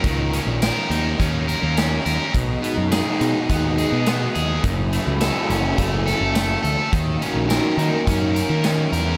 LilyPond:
<<
  \new Staff \with { instrumentName = "Overdriven electric guitar" } { \time 4/4 \key dis \phrygian \tempo 4 = 105 <dis cis' ais'>8 cis'8 ais'8 dis'8 cis'8 ais'8 cis'8 ais'8 | b,8 b8 gis'8 dis'8 b8 gis'8 b8 gis'8 | fis,8 a8 a'8 cis'8 a8 a'8 a8 a'8 | dis8 cis'8 ais'8 dis'8 cis'8 ais'8 cis'8 ais'8 | }
  \new Staff \with { instrumentName = "Clean electric guitar" } { \time 4/4 \key dis \phrygian <dis ais cis' fis'>1 | <b, dis gis dis' fis'>1 | <fis, cis e a cis' fis'>1 | <dis ais cis' fis'>1 | }
  \new Staff \with { instrumentName = "Picked electric bass" } { \clef bass \time 4/4 \key dis \phrygian cis,8. ais,,8 r16 dis,8 dis,8. dis,8. dis,16 r16 | b,,8 r16 fis,8 r16 b,16 r16 dis,8. b,8. dis,8 | fis,,8. cis,8 r16 fis,,8 fis,,8. fis,,8. d,16 r16 | dis,8 r16 ais,,8 r16 dis16 r16 fis,8. dis8. e,8 | }
  \new DrumStaff \with { instrumentName = "Drums" } \drummode { \time 4/4 <hh bd>8 hh8 <hh sn tamb>8 hh8 <hh bd>8 hh8 <hh sn tamb>8 hh8 | <hh bd>8 hh8 <hh sn tamb>8 hh8 <hh bd>8 hh8 <hh sn tamb>8 hh8 | <hh bd>8 hh8 <hh sn tamb>8 hh8 <hh bd>8 <hh sn>8 <hh sn tamb>8 hh8 | <hh bd>8 hh8 <hh sn tamb>8 hh8 <hh bd>8 hh8 <hh sn tamb>8 hh8 | }
>>